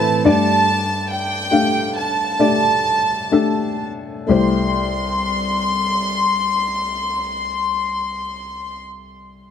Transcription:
Already playing: clean electric guitar A2 E3 A3 C4 E4 B4, grand piano C4 E4 A4 B4 C5, violin section A5
0.24 grand piano G2 A3 D4 G4 D5, clean electric guitar D4 G4 A4, violin section A5
1.11 violin section G5
1.51 grand piano A3 D4 G4 F5
1.98 violin section A5
2.39 grand piano A3 D4 G4 D5
3.32 grand piano A3 D4 G4 A4
4.27 grand piano C2 A3 E4 G4, violin section C6
4.31 grand piano C5

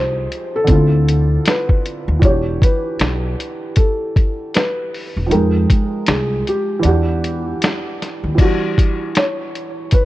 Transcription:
Already playing: upright bass C2, upright piano F3 D#4 G4 G#4, felt piano C5
0.32 closed hi-hat
0.56 felt piano A4
0.64 upright piano D3 C4, closed hi-hat
0.69 upright bass D2, upright piano E4, kick
0.73 upright piano F4
1.09 closed hi-hat
1.46 felt piano B4, snare, closed hi-hat
1.69 kick
1.86 closed hi-hat
2.08 upright bass D#2
2.19 upright bass E1, upright piano E3 D4, kick, closed hi-hat
2.25 upright piano F#4 G4, felt piano C#5
2.62 felt piano B4, kick, closed hi-hat
2.99 upright bass B1, snare, closed hi-hat
3.40 closed hi-hat
3.76 felt piano A4, kick, closed hi-hat
4.16 kick, closed hi-hat
4.54 felt piano B4, snare, closed hi-hat
4.94 open hi-hat
5.16 upright bass E1
5.26 upright piano F3 D#4
5.31 upright bass F2, upright piano G#3 G5, felt piano A#4, closed hi-hat
5.70 kick, closed hi-hat
6.06 upright bass C2, felt piano G#4, snare, closed hi-hat
6.47 felt piano G4, closed hi-hat
6.79 upright piano E3 D4, closed hi-hat
6.85 upright bass E2, upright piano G4 F#5
7.24 closed hi-hat
7.62 snare, closed hi-hat
8.02 snare, closed hi-hat
8.24 upright bass D#2
8.35 upright piano E3 D4, kick, crash
8.39 upright piano G3 F#4, felt piano F#4, closed hi-hat
8.78 kick, closed hi-hat
9.15 felt piano C#5, snare, closed hi-hat
9.55 closed hi-hat
9.91 felt piano B4, kick, closed hi-hat

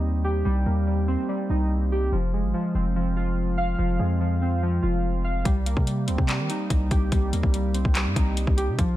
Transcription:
Already playing: 808-style bass D#2, synth keys G3 A#3 C4 D#4
0.24 synth keys G4
0.45 808-style bass C2, synth keys G3
0.66 808-style bass D#2, synth keys A#3
0.87 synth keys G3
1.08 synth keys C4
1.29 synth keys G3
1.50 808-style bass C2, synth keys D#4
1.92 synth keys G4
2.12 808-style bass F1, synth keys F3
2.33 synth keys G#3
2.43 808-style bass G#1
2.54 synth keys F3
2.74 808-style bass F1, synth keys C4
2.96 synth keys F3
3.16 synth keys F4
3.57 synth keys F5
3.78 808-style bass F1, synth keys F3
3.99 808-style bass F2, synth keys G#3
4.21 synth keys F3
4.42 synth keys C4
4.63 synth keys F3
4.83 808-style bass F1, synth keys F4
5.24 synth keys F5
5.45 808-style bass C2, synth keys G3, kick, closed hi-hat
5.66 synth keys A#3, closed hi-hat
5.77 808-style bass C3, kick
5.87 synth keys G3, closed hi-hat
6.07 808-style bass C#2, synth keys C4, closed hi-hat
6.18 808-style bass C3, kick
6.28 synth keys G3, clap, closed hi-hat
6.39 808-style bass D#3
6.50 synth keys D#4, closed hi-hat
6.70 808-style bass C2, kick, closed hi-hat
6.91 808-style bass C2, synth keys G4, kick, closed hi-hat
7.12 808-style bass C2, synth keys G3, kick, closed hi-hat
7.33 808-style bass D#2, synth keys A#3, closed hi-hat
7.43 808-style bass C2, kick
7.54 synth keys G3, closed hi-hat
7.74 synth keys C4, closed hi-hat
7.85 808-style bass C2, kick
7.95 synth keys G3, clap, closed hi-hat
8.06 808-style bass G2
8.16 808-style bass C2, synth keys D#4, kick, closed hi-hat
8.37 closed hi-hat
8.47 808-style bass C2, kick
8.57 synth keys G4, closed hi-hat
8.68 808-style bass C3
8.79 808-style bass A#1, synth keys F3, kick, closed hi-hat

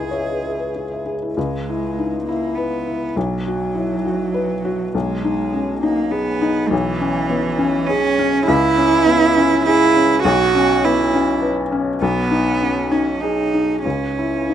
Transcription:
Already playing: felt piano C#2 E4 G#4 B4 D#5, cello G#4
0.11 felt piano C#5 E5
0.29 felt piano B4
0.46 felt piano E5
0.60 felt piano B4
0.76 felt piano G#4
0.92 felt piano E5
1.06 felt piano G#4
1.22 felt piano E4
1.35 felt piano C#2, cello G#3
1.69 felt piano E4
1.99 felt piano D#4
2.26 cello A#3, felt piano E4
2.55 cello B3, felt piano B4
2.87 felt piano E4
3.16 felt piano B1, cello F#3
3.46 felt piano F#4
3.75 felt piano E4
4.05 felt piano F#4
4.34 felt piano B4
4.65 felt piano F#4
4.92 felt piano B1, cello G#3
5.24 felt piano D#4
5.54 felt piano C#4
5.82 cello A#3, felt piano D#4
6.11 cello B3, felt piano G#4
6.42 felt piano D#4
6.70 felt piano B1, cello E3
7.00 felt piano C#4
7.30 felt piano B3
7.58 felt piano C#4
7.87 cello C#4, felt piano G#4
8.19 felt piano C#4
8.47 felt piano C#2, cello E4
8.78 felt piano C#4
9.06 felt piano B3
9.37 felt piano C#4
9.66 cello E4, felt piano G#4
9.96 felt piano C#4
10.24 felt piano B1, cello F#4
10.55 felt piano C#4
10.84 felt piano B3, cello E4
11.14 felt piano C#4
11.42 felt piano B4
11.72 felt piano C#4
12.01 felt piano B1, cello B3
12.31 felt piano D#4
12.62 felt piano C#4
12.92 cello C#4, felt piano D#4
13.21 cello D#4, felt piano G#4
13.54 felt piano D#4
13.83 felt piano C#2, cello C#4
14.18 felt piano E4
14.49 felt piano D#4

